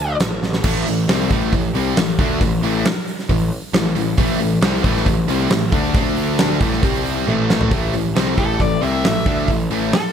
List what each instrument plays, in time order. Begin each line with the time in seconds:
Already playing: lead electric guitar A5
0.00 picked electric bass D2
0.20 picked electric bass A1, snare, closed hi-hat
0.42 picked electric bass A1, snare
0.53 snare
0.64 picked electric bass A1, overdriven electric guitar A2 E3 A3, kick, crash
0.86 picked electric bass A1, overdriven electric guitar A2 E3, open hi-hat
1.09 picked electric bass C2, overdriven electric guitar C3 G3 C4, snare, open hi-hat
1.31 picked electric bass A1, overdriven electric guitar A2 E3 A3, kick, open hi-hat
1.53 picked electric bass A1, overdriven electric guitar A2 E3, kick, open hi-hat
1.74 picked electric bass C2, overdriven electric guitar C3 G3 C4, open hi-hat
1.96 picked electric bass A1, overdriven electric guitar A2 E3, snare, open hi-hat
2.19 picked electric bass D2, overdriven electric guitar D3 A3 D4, kick, open hi-hat
2.41 picked electric bass A1, overdriven electric guitar A2 E3, kick, open hi-hat
2.62 picked electric bass A1, overdriven electric guitar A2 E3 A3, open hi-hat
2.85 snare, open hi-hat
3.07 open hi-hat
3.19 snare
3.29 picked electric bass A1, overdriven electric guitar A2 E3, kick, open hi-hat
3.51 open hi-hat
3.73 picked electric bass A1, overdriven electric guitar A2 E3, snare, open hi-hat
3.95 picked electric bass A1, overdriven electric guitar A2 E3, open hi-hat
4.18 picked electric bass A1, overdriven electric guitar A2 E3 A3, analog synth pad A3 E4 A4, kick, open hi-hat
4.40 picked electric bass A1, overdriven electric guitar A2 E3, open hi-hat
4.61 picked electric bass C2, overdriven electric guitar C3 G3 C4, snare, open hi-hat
4.84 picked electric bass A1, overdriven electric guitar A2 E3 A3, kick, open hi-hat
4.97 snare
5.06 picked electric bass A1, overdriven electric guitar A2 E3, kick, open hi-hat
5.28 picked electric bass C2, overdriven electric guitar C3 G3 C4, open hi-hat
5.50 picked electric bass A1, overdriven electric guitar A2 E3, snare, open hi-hat
5.72 picked electric bass D2, overdriven electric guitar D3 A3 D4, kick, open hi-hat
5.94 picked electric bass D2, overdriven electric guitar D3 A3 D4, analog synth pad D4 E5, kick, open hi-hat
6.17 open hi-hat
6.38 snare, open hi-hat
6.60 picked electric bass A1, overdriven electric guitar A2 E3 A3, kick, open hi-hat
6.72 snare
6.83 picked electric bass C2, overdriven electric guitar C3 G3 C4, kick, open hi-hat
7.06 open hi-hat
7.27 picked electric bass A1, overdriven electric guitar A2 E3 A3, high tom
7.50 snare
7.61 floor tom
7.71 picked electric bass A1, overdriven electric guitar A2 E3 A3, analog synth pad A3 E4 A4, kick, open hi-hat
7.94 picked electric bass A1, overdriven electric guitar A2 E3, open hi-hat
8.16 picked electric bass C2, overdriven electric guitar C3 G3 C4, snare, open hi-hat
8.38 picked electric bass A1, overdriven electric guitar A2 E3 A3, lead electric guitar A4, kick, open hi-hat
8.60 picked electric bass A1, overdriven electric guitar A2 E3, lead electric guitar D5, kick, open hi-hat
8.82 picked electric bass C2, overdriven electric guitar C3 G3 C4, lead electric guitar E5, open hi-hat
9.04 picked electric bass A1, overdriven electric guitar A2 E3, lead electric guitar E5, snare, open hi-hat
9.26 picked electric bass D2, overdriven electric guitar D3 A3 D4, kick, open hi-hat
9.48 picked electric bass A1, overdriven electric guitar A2 E3, kick, open hi-hat
9.70 picked electric bass A1, overdriven electric guitar A2 E3 A3, open hi-hat
9.93 lead electric guitar A4, snare, open hi-hat